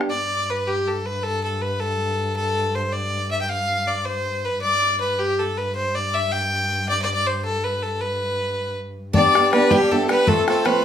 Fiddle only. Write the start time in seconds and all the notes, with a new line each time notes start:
0.10 D5
0.50 B4
0.67 G4
0.88 A4
1.06 B4
1.23 A4
1.44 A4
1.62 B4
1.80 A4
2.36 A4
2.75 C5
2.92 D5
3.31 E5
3.41 G5
3.49 F5
3.88 D5
4.05 C5
4.45 B4
4.62 D5
5.01 B4
5.19 G4
5.39 A4
5.58 B4
5.75 C5
5.95 D5
6.14 E5
6.31 G5
6.89 D5
7.02 D5
7.14 D5
7.27 C5
7.45 A4
7.64 B4
7.82 A4
8.01 B4
9.15 D5
9.52 B4
9.71 G4
9.92 A4
10.10 B4
10.28 A4
10.49 A4
10.66 B4